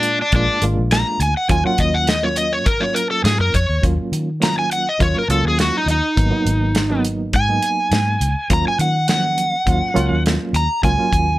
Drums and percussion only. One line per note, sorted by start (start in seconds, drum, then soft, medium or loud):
0.03 closed hi-hat medium
0.32 kick loud
0.32 closed hi-hat medium
0.62 closed hi-hat medium
0.91 snare loud
0.91 closed hi-hat medium
1.20 closed hi-hat medium
1.49 kick loud
1.49 closed hi-hat medium
1.78 kick medium
1.78 closed hi-hat medium
2.07 snare loud
2.07 closed hi-hat medium
2.36 closed hi-hat medium
2.66 kick loud
2.66 closed hi-hat medium
2.96 closed hi-hat medium
3.25 snare loud
3.25 closed hi-hat medium
3.54 kick medium
3.54 closed hi-hat medium
3.83 kick loud
3.83 closed hi-hat medium
4.13 closed hi-hat medium
4.42 snare loud
4.42 closed hi-hat medium
4.71 closed hi-hat medium
5.00 kick medium
5.00 closed hi-hat medium
5.30 closed hi-hat medium
5.59 snare medium
5.59 closed hi-hat medium
5.88 closed hi-hat medium
6.17 kick loud
6.17 closed hi-hat medium
6.47 closed hi-hat medium
6.75 snare loud
6.75 closed hi-hat medium
7.05 closed hi-hat medium
7.33 kick loud
7.33 closed hi-hat medium
7.62 closed hi-hat medium
7.92 snare loud
7.92 closed hi-hat medium
8.21 closed hi-hat medium
8.50 kick loud
8.50 closed hi-hat medium
8.79 closed hi-hat medium
9.08 snare loud
9.08 closed hi-hat medium
9.38 closed hi-hat medium
9.67 kick medium
9.67 closed hi-hat medium
9.96 closed hi-hat medium
10.26 snare loud
10.26 closed hi-hat medium
10.54 closed hi-hat medium
10.83 kick loud
10.83 closed hi-hat medium
11.13 kick medium
11.13 closed hi-hat medium